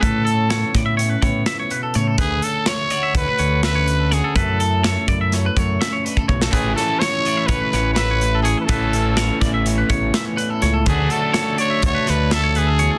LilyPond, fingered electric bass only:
\new Staff \with { instrumentName = "Fingered electric bass" } { \clef bass \time 9/8 \key d \major \tempo 4. = 83 a,4. a,4 a,8 r4 a,8 | d,8 r4. d,16 r16 d,2 | fis,4. fis,4 fis,8 r4 b,,8 | a,,8 r4. a,,16 r16 a,,2 |
a,,4. a,,4 a,,8 r4 cis,8 | d,8 r4. d,16 r16 d,2 | }